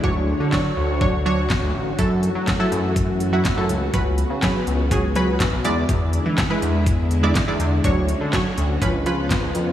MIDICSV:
0, 0, Header, 1, 5, 480
1, 0, Start_track
1, 0, Key_signature, 3, "minor"
1, 0, Tempo, 487805
1, 36, Time_signature, 4, 2, 24, 8
1, 9569, End_track
2, 0, Start_track
2, 0, Title_t, "Synth stab"
2, 0, Program_c, 0, 62
2, 34, Note_on_c, 0, 54, 93
2, 37, Note_on_c, 0, 62, 86
2, 40, Note_on_c, 0, 73, 103
2, 306, Note_off_c, 0, 54, 0
2, 308, Note_off_c, 0, 62, 0
2, 309, Note_off_c, 0, 73, 0
2, 516, Note_on_c, 0, 54, 99
2, 518, Note_on_c, 0, 62, 91
2, 521, Note_on_c, 0, 73, 107
2, 787, Note_off_c, 0, 54, 0
2, 788, Note_off_c, 0, 62, 0
2, 790, Note_off_c, 0, 73, 0
2, 996, Note_on_c, 0, 54, 93
2, 997, Note_on_c, 0, 62, 87
2, 1000, Note_on_c, 0, 73, 104
2, 1132, Note_off_c, 0, 54, 0
2, 1132, Note_off_c, 0, 62, 0
2, 1134, Note_off_c, 0, 73, 0
2, 1236, Note_on_c, 0, 54, 99
2, 1237, Note_on_c, 0, 62, 92
2, 1240, Note_on_c, 0, 73, 113
2, 1642, Note_off_c, 0, 54, 0
2, 1643, Note_off_c, 0, 62, 0
2, 1645, Note_off_c, 0, 73, 0
2, 1953, Note_on_c, 0, 54, 93
2, 1955, Note_on_c, 0, 64, 86
2, 1957, Note_on_c, 0, 69, 109
2, 2293, Note_off_c, 0, 54, 0
2, 2294, Note_off_c, 0, 64, 0
2, 2296, Note_off_c, 0, 69, 0
2, 2553, Note_on_c, 0, 54, 100
2, 2556, Note_on_c, 0, 64, 90
2, 2559, Note_on_c, 0, 69, 115
2, 2961, Note_off_c, 0, 54, 0
2, 2963, Note_off_c, 0, 64, 0
2, 2964, Note_off_c, 0, 69, 0
2, 3274, Note_on_c, 0, 54, 99
2, 3278, Note_on_c, 0, 64, 89
2, 3280, Note_on_c, 0, 66, 113
2, 3411, Note_off_c, 0, 54, 0
2, 3413, Note_off_c, 0, 64, 0
2, 3413, Note_off_c, 0, 66, 0
2, 3515, Note_on_c, 0, 54, 85
2, 3518, Note_on_c, 0, 64, 78
2, 3519, Note_on_c, 0, 69, 94
2, 3719, Note_off_c, 0, 54, 0
2, 3720, Note_off_c, 0, 64, 0
2, 3721, Note_off_c, 0, 69, 0
2, 3873, Note_on_c, 0, 54, 90
2, 3874, Note_on_c, 0, 61, 88
2, 3878, Note_on_c, 0, 71, 103
2, 4146, Note_off_c, 0, 54, 0
2, 4146, Note_off_c, 0, 61, 0
2, 4148, Note_off_c, 0, 71, 0
2, 4353, Note_on_c, 0, 54, 98
2, 4355, Note_on_c, 0, 61, 87
2, 4358, Note_on_c, 0, 71, 108
2, 4626, Note_off_c, 0, 54, 0
2, 4627, Note_off_c, 0, 61, 0
2, 4628, Note_off_c, 0, 71, 0
2, 4834, Note_on_c, 0, 54, 100
2, 4837, Note_on_c, 0, 61, 87
2, 4839, Note_on_c, 0, 68, 103
2, 4970, Note_off_c, 0, 54, 0
2, 4972, Note_off_c, 0, 61, 0
2, 4973, Note_off_c, 0, 68, 0
2, 5075, Note_on_c, 0, 54, 101
2, 5077, Note_on_c, 0, 61, 90
2, 5079, Note_on_c, 0, 71, 111
2, 5482, Note_off_c, 0, 54, 0
2, 5483, Note_off_c, 0, 61, 0
2, 5484, Note_off_c, 0, 71, 0
2, 5556, Note_on_c, 0, 56, 96
2, 5558, Note_on_c, 0, 64, 92
2, 5560, Note_on_c, 0, 74, 107
2, 6228, Note_off_c, 0, 56, 0
2, 6229, Note_off_c, 0, 64, 0
2, 6230, Note_off_c, 0, 74, 0
2, 6396, Note_on_c, 0, 56, 101
2, 6398, Note_on_c, 0, 64, 91
2, 6401, Note_on_c, 0, 71, 113
2, 6803, Note_off_c, 0, 56, 0
2, 6804, Note_off_c, 0, 64, 0
2, 6805, Note_off_c, 0, 71, 0
2, 7115, Note_on_c, 0, 56, 97
2, 7118, Note_on_c, 0, 64, 94
2, 7120, Note_on_c, 0, 74, 107
2, 7251, Note_off_c, 0, 56, 0
2, 7253, Note_off_c, 0, 64, 0
2, 7254, Note_off_c, 0, 74, 0
2, 7357, Note_on_c, 0, 56, 86
2, 7360, Note_on_c, 0, 64, 78
2, 7362, Note_on_c, 0, 74, 97
2, 7560, Note_off_c, 0, 56, 0
2, 7561, Note_off_c, 0, 64, 0
2, 7562, Note_off_c, 0, 74, 0
2, 7717, Note_on_c, 0, 54, 94
2, 7718, Note_on_c, 0, 62, 88
2, 7721, Note_on_c, 0, 73, 108
2, 7988, Note_off_c, 0, 54, 0
2, 7988, Note_off_c, 0, 62, 0
2, 7989, Note_off_c, 0, 73, 0
2, 8195, Note_on_c, 0, 54, 102
2, 8198, Note_on_c, 0, 62, 93
2, 8200, Note_on_c, 0, 73, 109
2, 8467, Note_off_c, 0, 54, 0
2, 8468, Note_off_c, 0, 62, 0
2, 8469, Note_off_c, 0, 73, 0
2, 8677, Note_on_c, 0, 53, 95
2, 8679, Note_on_c, 0, 61, 92
2, 8681, Note_on_c, 0, 71, 111
2, 8812, Note_off_c, 0, 53, 0
2, 8813, Note_off_c, 0, 61, 0
2, 8814, Note_off_c, 0, 71, 0
2, 8918, Note_on_c, 0, 53, 102
2, 8920, Note_on_c, 0, 61, 92
2, 8923, Note_on_c, 0, 71, 110
2, 9323, Note_off_c, 0, 53, 0
2, 9325, Note_off_c, 0, 61, 0
2, 9326, Note_off_c, 0, 71, 0
2, 9569, End_track
3, 0, Start_track
3, 0, Title_t, "String machine"
3, 0, Program_c, 1, 50
3, 0, Note_on_c, 1, 50, 78
3, 35, Note_on_c, 1, 73, 71
3, 36, Note_on_c, 1, 66, 89
3, 1916, Note_off_c, 1, 50, 0
3, 1937, Note_off_c, 1, 73, 0
3, 1954, Note_on_c, 1, 52, 78
3, 1956, Note_on_c, 1, 57, 71
3, 3856, Note_off_c, 1, 52, 0
3, 3857, Note_off_c, 1, 57, 0
3, 3876, Note_on_c, 1, 59, 70
3, 3878, Note_on_c, 1, 49, 76
3, 5517, Note_off_c, 1, 66, 0
3, 5539, Note_off_c, 1, 59, 0
3, 5540, Note_off_c, 1, 49, 0
3, 5554, Note_on_c, 1, 64, 85
3, 5555, Note_on_c, 1, 56, 75
3, 5556, Note_on_c, 1, 50, 80
3, 7694, Note_off_c, 1, 56, 0
3, 7694, Note_off_c, 1, 64, 0
3, 7715, Note_on_c, 1, 61, 70
3, 7716, Note_on_c, 1, 66, 82
3, 8645, Note_off_c, 1, 50, 0
3, 8666, Note_off_c, 1, 61, 0
3, 8667, Note_off_c, 1, 66, 0
3, 8675, Note_on_c, 1, 65, 85
3, 8676, Note_on_c, 1, 49, 80
3, 8677, Note_on_c, 1, 59, 72
3, 9569, Note_off_c, 1, 49, 0
3, 9569, Note_off_c, 1, 59, 0
3, 9569, Note_off_c, 1, 65, 0
3, 9569, End_track
4, 0, Start_track
4, 0, Title_t, "Analog synth bass"
4, 0, Program_c, 2, 38
4, 37, Note_on_c, 2, 38, 101
4, 336, Note_off_c, 2, 38, 0
4, 396, Note_on_c, 2, 50, 86
4, 696, Note_off_c, 2, 50, 0
4, 754, Note_on_c, 2, 38, 89
4, 1455, Note_off_c, 2, 38, 0
4, 1595, Note_on_c, 2, 38, 98
4, 1696, Note_off_c, 2, 38, 0
4, 1713, Note_on_c, 2, 33, 90
4, 1914, Note_off_c, 2, 33, 0
4, 1956, Note_on_c, 2, 42, 103
4, 2256, Note_off_c, 2, 42, 0
4, 2314, Note_on_c, 2, 54, 87
4, 2615, Note_off_c, 2, 54, 0
4, 2674, Note_on_c, 2, 42, 93
4, 3375, Note_off_c, 2, 42, 0
4, 3515, Note_on_c, 2, 42, 95
4, 3616, Note_off_c, 2, 42, 0
4, 3633, Note_on_c, 2, 37, 94
4, 3834, Note_off_c, 2, 37, 0
4, 3874, Note_on_c, 2, 37, 99
4, 4175, Note_off_c, 2, 37, 0
4, 4232, Note_on_c, 2, 49, 86
4, 4534, Note_off_c, 2, 49, 0
4, 4594, Note_on_c, 2, 37, 90
4, 5294, Note_off_c, 2, 37, 0
4, 5435, Note_on_c, 2, 35, 96
4, 5535, Note_off_c, 2, 35, 0
4, 5555, Note_on_c, 2, 40, 93
4, 5756, Note_off_c, 2, 40, 0
4, 5795, Note_on_c, 2, 40, 105
4, 6095, Note_off_c, 2, 40, 0
4, 6156, Note_on_c, 2, 52, 88
4, 6456, Note_off_c, 2, 52, 0
4, 6517, Note_on_c, 2, 40, 89
4, 7216, Note_off_c, 2, 40, 0
4, 7358, Note_on_c, 2, 40, 100
4, 7457, Note_off_c, 2, 40, 0
4, 7477, Note_on_c, 2, 40, 94
4, 7677, Note_off_c, 2, 40, 0
4, 7716, Note_on_c, 2, 38, 99
4, 8016, Note_off_c, 2, 38, 0
4, 8078, Note_on_c, 2, 50, 85
4, 8377, Note_off_c, 2, 50, 0
4, 8439, Note_on_c, 2, 38, 94
4, 8638, Note_off_c, 2, 38, 0
4, 8676, Note_on_c, 2, 37, 115
4, 9176, Note_off_c, 2, 37, 0
4, 9277, Note_on_c, 2, 37, 97
4, 9377, Note_off_c, 2, 37, 0
4, 9396, Note_on_c, 2, 41, 97
4, 9569, Note_off_c, 2, 41, 0
4, 9569, End_track
5, 0, Start_track
5, 0, Title_t, "Drums"
5, 36, Note_on_c, 9, 36, 100
5, 135, Note_off_c, 9, 36, 0
5, 517, Note_on_c, 9, 39, 109
5, 518, Note_on_c, 9, 36, 113
5, 524, Note_on_c, 9, 38, 92
5, 615, Note_off_c, 9, 39, 0
5, 617, Note_off_c, 9, 36, 0
5, 622, Note_off_c, 9, 38, 0
5, 994, Note_on_c, 9, 36, 114
5, 1093, Note_off_c, 9, 36, 0
5, 1475, Note_on_c, 9, 39, 109
5, 1477, Note_on_c, 9, 36, 117
5, 1482, Note_on_c, 9, 38, 90
5, 1574, Note_off_c, 9, 39, 0
5, 1575, Note_off_c, 9, 36, 0
5, 1581, Note_off_c, 9, 38, 0
5, 1954, Note_on_c, 9, 42, 66
5, 1956, Note_on_c, 9, 36, 105
5, 2052, Note_off_c, 9, 42, 0
5, 2054, Note_off_c, 9, 36, 0
5, 2194, Note_on_c, 9, 42, 48
5, 2292, Note_off_c, 9, 42, 0
5, 2435, Note_on_c, 9, 42, 60
5, 2436, Note_on_c, 9, 39, 115
5, 2438, Note_on_c, 9, 36, 121
5, 2443, Note_on_c, 9, 38, 89
5, 2534, Note_off_c, 9, 39, 0
5, 2534, Note_off_c, 9, 42, 0
5, 2536, Note_off_c, 9, 36, 0
5, 2541, Note_off_c, 9, 38, 0
5, 2677, Note_on_c, 9, 42, 47
5, 2775, Note_off_c, 9, 42, 0
5, 2914, Note_on_c, 9, 36, 120
5, 2917, Note_on_c, 9, 42, 79
5, 3012, Note_off_c, 9, 36, 0
5, 3016, Note_off_c, 9, 42, 0
5, 3152, Note_on_c, 9, 42, 49
5, 3251, Note_off_c, 9, 42, 0
5, 3394, Note_on_c, 9, 42, 71
5, 3395, Note_on_c, 9, 39, 114
5, 3396, Note_on_c, 9, 36, 118
5, 3402, Note_on_c, 9, 38, 90
5, 3493, Note_off_c, 9, 39, 0
5, 3493, Note_off_c, 9, 42, 0
5, 3495, Note_off_c, 9, 36, 0
5, 3500, Note_off_c, 9, 38, 0
5, 3634, Note_on_c, 9, 42, 59
5, 3733, Note_off_c, 9, 42, 0
5, 3873, Note_on_c, 9, 42, 68
5, 3875, Note_on_c, 9, 36, 106
5, 3971, Note_off_c, 9, 42, 0
5, 3973, Note_off_c, 9, 36, 0
5, 4112, Note_on_c, 9, 42, 49
5, 4211, Note_off_c, 9, 42, 0
5, 4354, Note_on_c, 9, 42, 60
5, 4355, Note_on_c, 9, 39, 115
5, 4357, Note_on_c, 9, 36, 113
5, 4362, Note_on_c, 9, 38, 92
5, 4453, Note_off_c, 9, 39, 0
5, 4453, Note_off_c, 9, 42, 0
5, 4455, Note_off_c, 9, 36, 0
5, 4460, Note_off_c, 9, 38, 0
5, 4596, Note_on_c, 9, 42, 49
5, 4695, Note_off_c, 9, 42, 0
5, 4833, Note_on_c, 9, 36, 122
5, 4836, Note_on_c, 9, 42, 84
5, 4932, Note_off_c, 9, 36, 0
5, 4935, Note_off_c, 9, 42, 0
5, 5072, Note_on_c, 9, 42, 49
5, 5171, Note_off_c, 9, 42, 0
5, 5316, Note_on_c, 9, 36, 115
5, 5316, Note_on_c, 9, 39, 110
5, 5316, Note_on_c, 9, 42, 72
5, 5323, Note_on_c, 9, 38, 89
5, 5414, Note_off_c, 9, 39, 0
5, 5414, Note_off_c, 9, 42, 0
5, 5415, Note_off_c, 9, 36, 0
5, 5421, Note_off_c, 9, 38, 0
5, 5555, Note_on_c, 9, 42, 57
5, 5654, Note_off_c, 9, 42, 0
5, 5795, Note_on_c, 9, 36, 107
5, 5795, Note_on_c, 9, 42, 67
5, 5893, Note_off_c, 9, 42, 0
5, 5894, Note_off_c, 9, 36, 0
5, 6033, Note_on_c, 9, 42, 50
5, 6131, Note_off_c, 9, 42, 0
5, 6277, Note_on_c, 9, 39, 121
5, 6277, Note_on_c, 9, 42, 59
5, 6279, Note_on_c, 9, 36, 113
5, 6285, Note_on_c, 9, 38, 95
5, 6375, Note_off_c, 9, 42, 0
5, 6376, Note_off_c, 9, 39, 0
5, 6377, Note_off_c, 9, 36, 0
5, 6383, Note_off_c, 9, 38, 0
5, 6518, Note_on_c, 9, 42, 50
5, 6616, Note_off_c, 9, 42, 0
5, 6755, Note_on_c, 9, 36, 121
5, 6758, Note_on_c, 9, 42, 77
5, 6853, Note_off_c, 9, 36, 0
5, 6856, Note_off_c, 9, 42, 0
5, 6995, Note_on_c, 9, 42, 49
5, 7093, Note_off_c, 9, 42, 0
5, 7237, Note_on_c, 9, 39, 111
5, 7237, Note_on_c, 9, 42, 73
5, 7238, Note_on_c, 9, 36, 118
5, 7244, Note_on_c, 9, 38, 90
5, 7335, Note_off_c, 9, 39, 0
5, 7335, Note_off_c, 9, 42, 0
5, 7336, Note_off_c, 9, 36, 0
5, 7342, Note_off_c, 9, 38, 0
5, 7477, Note_on_c, 9, 42, 57
5, 7575, Note_off_c, 9, 42, 0
5, 7716, Note_on_c, 9, 42, 69
5, 7717, Note_on_c, 9, 36, 103
5, 7815, Note_off_c, 9, 36, 0
5, 7815, Note_off_c, 9, 42, 0
5, 7956, Note_on_c, 9, 42, 51
5, 8054, Note_off_c, 9, 42, 0
5, 8198, Note_on_c, 9, 42, 63
5, 8199, Note_on_c, 9, 39, 121
5, 8200, Note_on_c, 9, 36, 120
5, 8206, Note_on_c, 9, 38, 90
5, 8296, Note_off_c, 9, 42, 0
5, 8297, Note_off_c, 9, 39, 0
5, 8298, Note_off_c, 9, 36, 0
5, 8304, Note_off_c, 9, 38, 0
5, 8439, Note_on_c, 9, 42, 49
5, 8537, Note_off_c, 9, 42, 0
5, 8676, Note_on_c, 9, 36, 119
5, 8679, Note_on_c, 9, 42, 81
5, 8774, Note_off_c, 9, 36, 0
5, 8777, Note_off_c, 9, 42, 0
5, 8915, Note_on_c, 9, 42, 48
5, 9013, Note_off_c, 9, 42, 0
5, 9157, Note_on_c, 9, 39, 114
5, 9157, Note_on_c, 9, 42, 72
5, 9158, Note_on_c, 9, 36, 122
5, 9164, Note_on_c, 9, 38, 86
5, 9255, Note_off_c, 9, 39, 0
5, 9255, Note_off_c, 9, 42, 0
5, 9257, Note_off_c, 9, 36, 0
5, 9262, Note_off_c, 9, 38, 0
5, 9396, Note_on_c, 9, 42, 57
5, 9494, Note_off_c, 9, 42, 0
5, 9569, End_track
0, 0, End_of_file